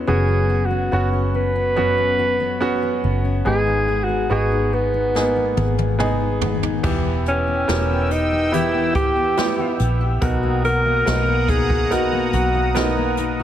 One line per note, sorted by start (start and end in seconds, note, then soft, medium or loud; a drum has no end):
0.00 0.17 E3 medium
0.00 0.10 G#3 medium
0.00 0.28 B3 soft
0.00 0.08 C#4 soft
0.00 0.31 C#4 soft
0.00 0.10 E4 medium
0.00 0.16 G#4 medium
0.07 0.89 F#1 medium
0.07 1.75 F#2 medium
0.07 0.88 B3 medium
0.07 0.88 C#4 soft
0.07 0.89 F#4 medium
0.07 0.67 G#4 medium
0.28 0.70 B3 soft
0.50 0.91 F#4 medium
0.66 0.93 F#4 medium
0.71 1.34 B3 soft
0.92 3.00 F#1 medium
0.92 1.73 B3 medium
0.92 1.73 C#4 medium
0.92 2.18 F#4 medium
0.92 1.73 F#4 medium
0.92 1.10 F#4 medium
1.13 1.54 C#4 soft
1.34 1.97 B3 soft
1.34 3.00 B4 medium
1.56 2.81 C#4 medium
1.76 3.45 F#2 medium
1.76 2.57 B3 medium
1.76 2.57 C#4 medium
1.76 2.58 F#4 medium
1.98 2.39 B3 medium
2.19 2.60 F#4 medium
2.40 3.03 B3 soft
2.60 3.41 B3 medium
2.60 3.42 C#4 medium
2.60 3.54 F#4 medium
2.60 3.42 F#4 medium
2.82 3.24 C#4 soft
3.04 3.43 F#1 medium
3.04 3.66 B3 medium
3.25 3.55 C#4 soft
3.45 4.27 G#1 medium
3.45 5.14 G#2 medium
3.45 4.69 G#2 soft
3.45 4.26 B3 medium
3.45 4.26 D#4 medium
3.45 4.26 G#4 medium
3.45 4.05 G#4 loud
3.67 4.08 B3 soft
3.88 4.29 G#4 medium
4.04 4.31 F#4 medium
4.09 4.73 B3 soft
4.30 5.53 G#1 medium
4.30 5.10 B3 medium
4.30 5.11 D#4 medium
4.30 5.11 F#4 medium
4.30 5.56 G#4 medium
4.30 4.76 G#4 medium
4.52 4.93 D#4 soft
4.73 5.36 B3 soft
4.73 6.00 B3 medium
4.94 6.19 D#4 medium
5.15 6.93 G#2 medium
5.15 5.22 A#3 soft
5.15 5.96 D#4 medium
5.15 5.96 G#4 medium
5.15 snare soft
5.22 5.97 B3 medium
5.36 5.78 B3 soft
5.57 6.80 G#1 medium
5.57 5.99 G#4 medium
5.57 high tom medium
5.78 6.41 B3 soft
5.78 high tom medium
5.99 6.79 B3 medium
5.99 6.80 D#4 medium
5.99 6.80 G#4 medium
5.99 6.93 G#4 medium
5.99 mid tom medium
6.20 6.62 D#4 soft
6.41 7.05 B3 soft
6.41 floor tom medium
6.63 6.93 D#4 soft
6.63 floor tom medium
6.83 7.65 E1 medium
6.83 8.07 E3 medium
6.83 8.52 E3 medium
6.83 7.64 B3 medium
6.83 7.64 E4 medium
6.83 7.65 G4 medium
6.83 10.19 G5 medium
6.83 10.19 E6 medium
6.83 kick loud
6.83 crash medium
7.05 7.47 B3 soft
7.26 8.13 C#4 medium
7.26 8.31 G4 medium
7.26 closed hi-hat medium
7.47 7.89 B3 soft
7.68 9.76 E1 medium
7.68 8.49 B3 medium
7.68 8.11 E4 medium
7.68 8.49 G4 medium
7.68 8.49 A#4 medium
7.68 snare loud
7.68 closed hi-hat medium
7.90 8.74 B3 soft
8.11 8.55 D#4 medium
8.11 closed hi-hat medium
8.32 8.95 G4 medium
8.52 10.31 E3 medium
8.52 9.33 B3 medium
8.52 9.33 E4 medium
8.52 8.95 E4 medium
8.52 9.34 G4 medium
8.52 closed hi-hat medium
8.74 9.16 B3 soft
8.95 9.76 G4 medium
8.95 kick medium
8.95 closed hi-hat medium
9.17 9.58 B3 soft
9.37 10.18 B3 medium
9.37 9.79 E4 medium
9.37 10.18 E4 medium
9.37 10.18 G4 medium
9.37 snare medium
9.37 closed hi-hat medium
9.58 10.43 B3 medium
9.79 10.19 A#1 medium
9.79 10.31 E4 medium
9.79 closed hi-hat medium
10.01 10.31 G4 medium
10.21 11.03 B1 loud
10.21 11.90 B2 medium
10.21 11.45 B2 medium
10.21 11.02 B3 medium
10.21 11.02 D#4 medium
10.21 10.62 F#4 medium
10.21 11.03 A#4 medium
10.21 13.43 F#5 medium
10.21 13.43 A#5 medium
10.21 13.43 D#6 medium
10.21 kick loud
10.21 closed hi-hat medium
10.43 10.85 A#3 medium
10.64 11.70 F#4 medium
10.64 11.51 A#4 loud
10.64 closed hi-hat medium
10.85 11.27 A#3 medium
11.05 12.30 B1 medium
11.05 11.86 B3 medium
11.05 11.87 D#4 medium
11.05 11.48 D#4 medium
11.05 11.87 A#4 medium
11.05 snare loud
11.05 closed hi-hat medium
11.28 12.12 A#3 medium
11.49 12.75 D#4 soft
11.49 11.94 G#4 medium
11.49 kick medium
11.49 closed hi-hat medium
11.70 12.33 F#4 medium
11.70 kick medium
11.90 13.43 B2 medium
11.90 12.71 B3 medium
11.90 12.71 D#4 medium
11.90 13.19 F#4 medium
11.90 12.71 A#4 medium
11.90 closed hi-hat medium
12.13 12.54 A#3 medium
12.33 13.43 B1 medium
12.33 13.39 F#4 medium
12.33 closed hi-hat medium
12.55 12.97 A#3 medium
12.75 13.43 B3 medium
12.75 13.43 D#4 medium
12.75 13.18 D#4 medium
12.75 13.43 A#4 medium
12.75 snare medium
12.75 closed hi-hat medium
12.97 13.43 A#3 medium
13.17 13.43 D#4 medium
13.17 closed hi-hat medium
13.40 13.43 F#4 medium